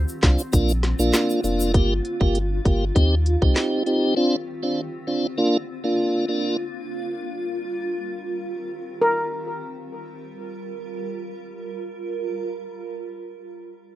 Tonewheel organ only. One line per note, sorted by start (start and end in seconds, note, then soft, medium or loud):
0.22 0.42 C4 medium
0.22 0.42 D4 medium
0.22 0.42 F4 medium
0.53 0.72 A#3 medium
0.53 0.72 D4 medium
0.53 0.72 F4 loud
0.99 1.40 A#3 medium
0.99 1.41 D4 medium
0.99 1.41 F4 medium
1.44 1.72 A#3 medium
1.44 1.72 D4 medium
1.44 1.72 F4 medium
1.74 1.93 A#3 medium
1.74 1.94 F4 medium
1.74 1.94 G4 loud
2.20 2.38 A#3 medium
2.20 2.39 F4 medium
2.20 2.39 G4 medium
2.65 2.84 A#3 medium
2.65 2.85 F4 medium
2.65 2.85 G4 medium
2.95 3.15 C4 loud
2.95 3.15 D#4 medium
2.95 3.15 G4 loud
3.42 3.83 C4 medium
3.42 3.83 D#4 medium
3.42 3.83 G4 medium
3.86 4.14 C4 medium
3.86 4.15 D#4 medium
3.86 4.15 G4 medium
4.16 4.36 C4 medium
4.16 4.36 D4 medium
4.16 4.36 F4 loud
4.63 4.81 C4 medium
4.63 4.81 D4 medium
4.63 4.81 F4 medium
5.07 5.27 C4 medium
5.07 5.27 D4 medium
5.07 5.27 F4 medium
5.38 5.57 A#3 medium
5.38 5.57 D4 medium
5.38 5.58 F4 loud
5.84 6.25 A#3 medium
5.84 6.25 D4 medium
5.84 6.26 F4 medium
6.28 6.57 A#3 medium
6.28 6.57 D4 medium
6.28 6.57 F4 medium